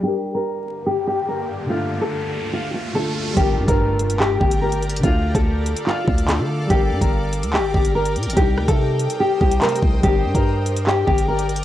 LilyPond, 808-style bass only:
\new Staff \with { instrumentName = "808-style bass" } { \clef bass \time 4/4 \key g \minor \tempo 4 = 144 r1 | r1 | g,,8 g,16 g,4.~ g,16 g,,4. | d,8. d,4 r8. d,8. d8. |
g,,8 g,16 g,,4 d,16. g,,16. g,,4 bes,16 g,,16 | c,8 d,16 c4 r8. c,8 r8 c,8 | g,,8 g,16 g,4.~ g,16 g,,4. | }